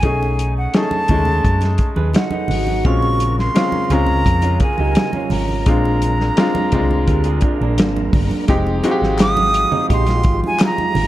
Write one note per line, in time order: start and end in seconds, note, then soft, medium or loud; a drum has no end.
0.00 0.66 B1 loud
0.00 0.63 A3 medium
0.00 0.63 C#4 medium
0.00 0.63 D#4 medium
0.00 0.54 G#5 medium
0.00 kick loud
0.00 closed hi-hat medium
0.00 muted conga soft
0.04 0.64 G#4 medium
0.23 muted conga soft
0.39 closed hi-hat medium
0.58 0.77 F#5 medium
0.74 1.04 A3 medium
0.74 1.04 C#4 medium
0.74 1.04 D#4 medium
0.74 1.05 G#4 medium
0.74 1.89 A5 loud
0.74 snare loud
0.74 closed hi-hat medium
0.91 muted conga soft
0.91 high conga medium
1.08 1.41 D#2 medium
1.08 2.29 G#3 medium
1.08 2.29 A3 medium
1.08 2.29 C#4 medium
1.08 2.29 D#4 medium
1.08 kick medium
1.08 closed hi-hat medium
1.08 low conga medium
1.25 low conga medium
1.44 1.76 F#2 medium
1.44 kick medium
1.44 closed hi-hat medium
1.61 snare soft
1.61 closed hi-hat soft
1.61 muted conga soft
1.78 kick medium
1.78 closed hi-hat medium
1.96 2.13 D#2 medium
1.96 2.14 G#4 medium
1.96 2.14 B4 medium
1.96 high conga medium
2.13 2.30 D#4 medium
2.13 2.31 F#4 medium
2.13 2.88 F#5 medium
2.13 snare loud
2.13 closed hi-hat medium
2.13 muted conga soft
2.31 2.82 B3 medium
2.31 2.82 D#4 medium
2.31 muted conga soft
2.31 high conga medium
2.48 2.81 G#1 medium
2.48 3.17 F#4 medium
2.48 open hi-hat medium
2.48 high conga medium
2.48 low conga medium
2.67 high conga medium
2.83 3.48 A#1 loud
2.83 5.64 C#3 medium
2.83 3.44 G#3 medium
2.83 3.45 C4 medium
2.83 3.45 C#4 medium
2.83 3.45 F4 medium
2.83 8.45 A#4 medium
2.83 8.45 A#5 medium
2.83 3.39 C#6 loud
2.83 kick loud
2.83 closed hi-hat medium
2.83 muted conga soft
3.02 muted conga soft
3.20 closed hi-hat medium
3.39 3.84 C6 medium
3.39 snare soft
3.54 3.85 G#3 medium
3.54 3.85 C4 medium
3.54 3.85 C#4 medium
3.54 3.86 F4 medium
3.54 snare medium
3.54 closed hi-hat loud
3.54 muted conga soft
3.72 high conga medium
3.84 3.94 C6 medium
3.90 4.22 C#2 medium
3.90 5.10 G#3 medium
3.90 5.10 C4 medium
3.90 5.10 C#4 medium
3.90 5.10 F4 medium
3.90 4.62 A#5 loud
3.90 closed hi-hat medium
3.90 low conga medium
4.06 low conga medium
4.25 4.57 F2 loud
4.25 kick medium
4.25 closed hi-hat medium
4.25 muted conga soft
4.42 4.60 C#4 medium
4.42 4.60 F4 medium
4.42 closed hi-hat medium
4.42 muted conga soft
4.60 4.79 F4 medium
4.60 4.78 G#4 medium
4.60 5.34 G#5 medium
4.60 kick medium
4.60 closed hi-hat medium
4.78 4.95 C#2 loud
4.78 5.13 D#4 medium
4.78 5.13 G4 medium
4.78 high conga medium
4.95 snare loud
4.95 closed hi-hat medium
4.95 muted conga soft
5.13 5.65 C#4 medium
5.13 5.64 F4 medium
5.13 muted conga soft
5.13 high conga medium
5.30 5.63 G#1 medium
5.30 7.78 A#5 medium
5.30 open hi-hat medium
5.30 high conga medium
5.30 low conga medium
5.49 high conga medium
5.66 6.29 A#1 loud
5.66 6.26 G#3 medium
5.66 6.27 C4 medium
5.66 8.46 D4 medium
5.66 6.27 D4 medium
5.66 6.27 F4 medium
5.66 kick loud
5.66 closed hi-hat medium
5.85 muted conga soft
6.02 closed hi-hat medium
6.02 high conga medium
6.20 snare soft
6.37 6.67 G#3 medium
6.37 6.68 C4 medium
6.37 6.67 D4 medium
6.37 6.68 F4 loud
6.37 snare loud
6.37 closed hi-hat loud
6.55 muted conga soft
6.55 high conga medium
6.72 7.04 C2 medium
6.72 7.92 G#3 medium
6.72 7.92 C4 medium
6.72 7.92 D4 medium
6.72 7.92 F4 medium
6.72 kick medium
6.72 closed hi-hat medium
6.72 low conga medium
6.91 low conga medium
7.07 7.39 D2 medium
7.07 7.25 G4 medium
7.07 7.24 A#4 medium
7.07 kick medium
7.07 closed hi-hat medium
7.24 7.42 F4 medium
7.24 7.42 G#4 medium
7.24 closed hi-hat soft
7.41 7.60 D4 medium
7.41 7.60 F4 medium
7.41 kick medium
7.41 closed hi-hat medium
7.61 7.76 A#1 medium
7.61 8.46 A#3 medium
7.61 8.45 D4 medium
7.61 high conga medium
7.78 8.09 G#1 medium
7.78 snare loud
7.78 closed hi-hat medium
7.96 muted conga soft
7.96 high conga medium
8.13 8.29 G1 loud
8.13 kick loud
8.13 open hi-hat medium
8.13 high conga medium
8.13 low conga medium
8.31 high conga medium
8.48 8.80 F1 loud
8.48 11.07 F3 medium
8.48 8.78 G#3 medium
8.48 11.07 G#3 medium
8.48 8.78 C4 medium
8.48 8.79 D#4 medium
8.48 11.07 D#4 medium
8.48 11.07 G4 medium
8.48 8.79 G4 loud
8.48 kick loud
8.48 closed hi-hat loud
8.48 muted conga soft
8.67 muted conga soft
8.83 10.03 G#3 medium
8.83 10.03 C4 medium
8.83 10.03 D#4 medium
8.83 8.91 F#4 medium
8.83 11.07 F5 medium
8.83 closed hi-hat medium
8.83 high conga medium
8.91 10.07 G4 loud
9.01 9.64 G#1 medium
9.01 snare soft
9.19 9.86 D#6 loud
9.19 snare loud
9.19 clap medium
9.19 closed hi-hat loud
9.37 muted conga soft
9.37 high conga medium
9.54 closed hi-hat medium
9.72 9.89 C4 medium
9.72 9.88 D#4 medium
9.72 low conga medium
9.89 10.21 A#1 loud
9.89 10.05 D#4 medium
9.89 10.06 G4 medium
9.89 10.40 C6 loud
9.89 kick medium
9.89 closed hi-hat medium
9.89 muted conga soft
10.06 11.07 F4 medium
10.06 snare soft
10.06 closed hi-hat medium
10.06 muted conga soft
10.23 10.40 G#1 medium
10.23 kick medium
10.23 closed hi-hat medium
10.44 10.61 G#5 loud
10.44 high conga medium
10.59 snare loud
10.59 clap medium
10.59 closed hi-hat medium
10.59 muted conga soft
10.66 11.07 A#5 loud
10.78 muted conga soft
10.78 high conga medium
10.95 11.07 G#1 medium
10.95 open hi-hat medium
10.95 high conga medium
10.95 low conga medium